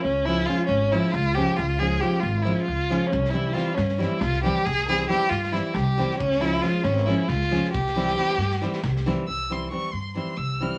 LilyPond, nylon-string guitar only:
\new Staff \with { instrumentName = "Nylon-string guitar" } { \time 7/8 \tempo 4 = 137 r8 <f aes des' f'>8 <f aes des' f'>8 r8 <f aes des' f'>8 r8 <f aes des' f'>8 | r8 <f aes des' f'>8 <f aes des' f'>8 r8 <f aes des' f'>8 r8 <f aes des' f'>8 | r8 <e g c' e'>8 <e g c' e'>8 r8 <e g c' e'>8 r8 <e g c' e'>8 | r8 <e g c' e'>8 <e g c' e'>8 r8 <e g c' e'>8 r8 <e g c' e'>8 |
r8 <f aes des' f'>8 <f aes des' f'>8 r8 <f aes des' f'>8 r8 <f aes des' f'>8 | r8 <e g c' e'>8 <e g c' e'>8 r8 <e g c' e'>8 r8 <e g c' e'>8 | r8 <e g c' e'>8 <e g c' e'>8 r8 <e g c' e'>8 r8 <e g c' e'>8 | }